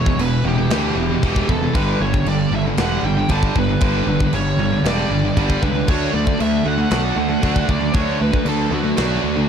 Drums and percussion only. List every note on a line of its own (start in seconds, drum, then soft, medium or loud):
0.06 kick medium
0.19 crash medium
0.70 snare loud
0.70 crash medium
1.23 kick medium
1.23 crash medium
1.36 kick loud
1.49 kick medium
1.75 kick loud
1.75 crash medium
2.14 kick medium
2.26 crash medium
2.77 snare loud
2.77 crash medium
3.29 kick medium
3.29 crash medium
3.43 kick loud
3.56 kick medium
3.81 kick loud
3.81 crash medium
4.20 kick medium
4.33 crash medium
4.85 snare loud
4.85 crash medium
5.37 kick medium
5.37 crash medium
5.50 kick medium
5.63 kick medium
5.88 kick loud
5.88 crash medium
6.27 kick medium
6.40 crash medium
6.91 snare loud
6.91 crash medium
7.43 kick medium
7.43 crash medium
7.56 kick loud
7.69 kick medium
7.94 kick loud
7.94 crash medium
8.33 kick medium
8.46 crash medium
8.97 snare loud
8.97 crash medium